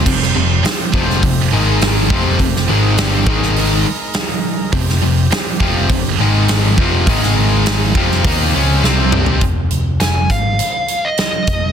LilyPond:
<<
  \new Staff \with { instrumentName = "Lead electric guitar" } { \time 4/4 \key f \minor \tempo 4 = 102 r1 | r1 | r1 | r1 |
r4 aes''8 f''4~ f''16 ees''4~ ees''16 | }
  \new Staff \with { instrumentName = "Tonewheel organ" } { \time 4/4 \key f \minor << { <f g'>2~ <f g'>8 <aes bes'>4 <f g'>8~ | <f g'>4. <aes bes'>2~ <aes bes'>8 | <f g'>2~ <f g'>8 <aes bes'>4 <f g'>8 | <aes bes'>4. <f g'>4. c''4 |
r1 | } \\ { c'2~ c'8 ees'4 c'8~ | c'4. ees'2~ ees'8 | c'2~ c'8 ees'4 c'8 | ees'4. c'2~ c'8 |
r1 | } >> }
  \new Staff \with { instrumentName = "Distorted electric guitar" } { \clef bass \time 4/4 \key f \minor <f, c>8 <f, c>8 r8 <f, c f>8 <f, c>8 <aes, ees aes>4 <f, c f>8 | <f, c>8 <aes, ees aes>8 <g, d g>8 <aes, ees aes>4 r4. | <f, c>8 <f, c>8 r8 <f, c f>8 <f, c>8 <aes, ees aes>4 <f, c f>8 | <aes, ees aes>4. <f, c f>8 <ees bes ees'>8 <des aes des'>8 <c g c'>4 |
r1 | }
  \new Staff \with { instrumentName = "Distorted electric guitar" } { \clef bass \time 4/4 \key f \minor <f, c>8 <f, c>8 r8 <f, c f>8 <f, c>8 <aes, ees aes>4 <f, c f>8 | <f, c>8 <aes, ees aes>8 <g, d g>8 <aes, ees aes>4 r4. | <f, c>8 <f, c>8 r8 <f, c f>8 <f, c>8 <aes, ees aes>4 <f, c f>8 | <aes, ees aes>4. <f, c f>8 <ees bes ees'>8 <des aes des'>8 <c g c'>4 |
r1 | }
  \new Staff \with { instrumentName = "Picked electric bass" } { \clef bass \time 4/4 \key f \minor f,,8 f,,8 r8 f,,8 f,,8 aes,,4 f,,8 | f,,8 aes,,8 g,,8 aes,,4 r4. | f,,8 f,,8 r8 f,,8 f,,8 aes,,4 f,,8 | aes,,4. f,,8 ees,8 des,8 c,4 |
f,,8 f,,8 f,,8 aes,,8 r4. f,,8 | }
  \new DrumStaff \with { instrumentName = "Drums" } \drummode { \time 4/4 <cymc bd>16 sn8. <hho sn>8 bd16 sn16 <hho bd>4 <hho sn>8 bd8 | <hho bd>16 sn8. <hho sn>8 bd16 sn16 hho4 <hho sn>4 | <hho bd>16 sn8. <hho sn>8 bd8 <hho bd>4 <hho sn>8 bd8 | <hho bd>16 sn8. <hho sn>8 bd16 sn16 <hho bd>4 sn8 toml16 tomfh16 |
<hh bd>8 hh8 <hh sn>8 <hh bd>8 hh8 hh8 <hh sn>8 <hh bd>8 | }
>>